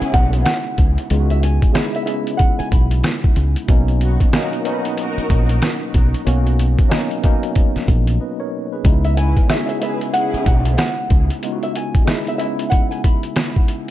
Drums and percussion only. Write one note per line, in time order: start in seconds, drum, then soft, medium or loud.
0.02 closed hi-hat soft
0.14 kick loud
0.14 closed hi-hat medium
0.33 closed hi-hat medium
0.46 cross-stick medium
0.46 snare loud
0.46 closed hi-hat loud
0.78 kick loud
0.78 closed hi-hat medium
0.98 closed hi-hat medium
1.10 closed hi-hat loud
1.30 closed hi-hat soft
1.43 closed hi-hat medium
1.62 kick medium
1.62 closed hi-hat medium
1.75 cross-stick loud
1.75 snare loud
1.75 closed hi-hat medium
1.95 closed hi-hat soft
2.07 closed hi-hat medium
2.27 closed hi-hat medium
2.39 kick loud
2.39 closed hi-hat medium
2.60 closed hi-hat soft
2.72 kick medium
2.72 closed hi-hat medium
2.91 closed hi-hat medium
3.04 cross-stick medium
3.04 snare loud
3.04 closed hi-hat medium
3.24 kick medium
3.36 closed hi-hat medium
3.56 closed hi-hat medium
3.68 kick loud
3.68 closed hi-hat loud
3.88 closed hi-hat soft
4.01 closed hi-hat medium
4.20 kick medium
4.20 closed hi-hat medium
4.33 cross-stick loud
4.33 snare loud
4.33 closed hi-hat medium
4.53 closed hi-hat soft
4.65 closed hi-hat medium
4.85 closed hi-hat medium
4.98 closed hi-hat medium
5.18 closed hi-hat soft
5.30 kick loud
5.30 closed hi-hat medium
5.49 closed hi-hat medium
5.62 cross-stick medium
5.62 snare loud
5.62 closed hi-hat loud
5.94 kick medium
5.94 closed hi-hat medium
6.14 closed hi-hat medium
6.27 closed hi-hat loud
6.47 closed hi-hat soft
6.59 closed hi-hat medium
6.79 kick medium
6.79 closed hi-hat medium
6.92 cross-stick loud
6.92 snare loud
6.92 closed hi-hat medium
7.11 closed hi-hat soft
7.24 kick medium
7.24 closed hi-hat medium
7.43 closed hi-hat medium
7.55 kick loud
7.55 closed hi-hat medium
7.76 snare soft
7.76 closed hi-hat soft
7.88 kick loud
7.88 closed hi-hat medium
8.07 closed hi-hat medium
8.85 kick loud
8.85 closed hi-hat loud
9.05 closed hi-hat soft
9.17 closed hi-hat medium
9.37 kick medium
9.37 closed hi-hat medium
9.50 cross-stick loud
9.50 snare loud
9.50 closed hi-hat medium
9.69 closed hi-hat soft
9.82 closed hi-hat medium
10.01 closed hi-hat medium
10.14 closed hi-hat medium
10.34 closed hi-hat soft
10.46 kick medium
10.46 closed hi-hat medium
10.65 closed hi-hat medium
10.78 cross-stick medium
10.78 snare loud
10.78 closed hi-hat loud
11.10 kick loud
11.10 closed hi-hat medium
11.30 closed hi-hat medium
11.43 closed hi-hat loud
11.63 closed hi-hat soft
11.76 closed hi-hat medium
11.95 kick loud
11.95 closed hi-hat medium
12.08 cross-stick loud
12.08 snare loud
12.08 closed hi-hat medium
12.27 closed hi-hat soft
12.40 closed hi-hat medium
12.59 closed hi-hat medium
12.71 kick loud
12.71 closed hi-hat loud
12.92 closed hi-hat soft
13.04 kick medium
13.04 closed hi-hat medium
13.23 closed hi-hat medium
13.36 cross-stick loud
13.36 snare loud
13.36 closed hi-hat medium
13.56 kick medium
13.68 closed hi-hat medium